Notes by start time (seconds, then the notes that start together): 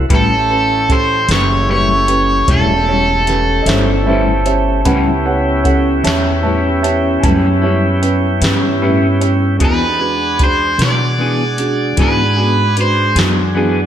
0.09 A1 A2 G3 A3 C#4 E4 G4 B4, kick, closed hi-hat
0.14 A4
0.49 C#4 G4 B4
0.88 C#4 G4 A4 C5, kick, closed hi-hat
1.29 F#1 C#4 G4 B4 C#5, snare, closed hi-hat
1.68 A2 G3 C#4 E4 G4 B4 C#5
2.08 C#4 G4 B4, closed hi-hat
2.47 E1 A2 G3 C#4 E4 G4 A4 C#5, kick, closed hi-hat
2.87 G3 C#4 E4 G4 C#5
3.27 C#4 G4 B4, snare, closed hi-hat
3.62 G1 D#5, closed hi-hat
3.67 G3 C#4 E4 G4 C5 C#5 E5, snare
4.06 A2 G3 C#4 E4 G4 B4 C5 E5
4.46 C#4 G4 C5 C#5 E5, closed hi-hat
4.85 C#2 A2 G3 B3 C#4 E4 G4 B4 C#5 F#5, kick, closed hi-hat
5.25 C#4 G4 B4 C#5 F#5
5.63 C#4 G4 A4 C#5 F#5, kick, closed hi-hat
6.04 E2 C#4 G4 C#5 E5 A5, snare, closed hi-hat
6.37 G4
6.43 A2 G3 C#4 G4 B4 E5 A5
6.47 E4
6.82 C#4 G4 C#5 E5 A5, closed hi-hat
7.19 A2 G#5
7.23 F#2 G3 C#4 E4 G4 B4 A5, kick, closed hi-hat
7.62 G3 C#4 E4 G4 C#5
8.02 C#4 G4 B4, closed hi-hat
8.41 G2 G3 C#4 E4 G4 B4, snare, closed hi-hat
8.81 A2 G3 C#4 E4 G4 B4
9.20 C#4 G4 C#5, closed hi-hat
9.59 E2 E3 B3 C4 D4 D#4 F#4 G4 G#4 A4, kick, closed hi-hat
9.65 B4
9.99 G#3 D4 F#4 G#4 B4
10.39 D4 F#4 G#4, kick, closed hi-hat
10.44 C5
10.78 B2 D4 F#4 B4, snare, closed hi-hat
10.83 D5
11.18 E3 B3 D4 F#4 G#4
11.58 D4 F#4 G#4, closed hi-hat
11.97 G#2 E3 B3 D4 F#4 G#4, kick, snare, closed hi-hat
12.02 B4
12.37 B3 D4 F#4 G#4
12.77 D4 F#4 B4, closed hi-hat
12.81 C5
13.15 F#2 B3 D4 F#4 G#4, snare, closed hi-hat
13.54 E3 B3 D4 F#4 G#4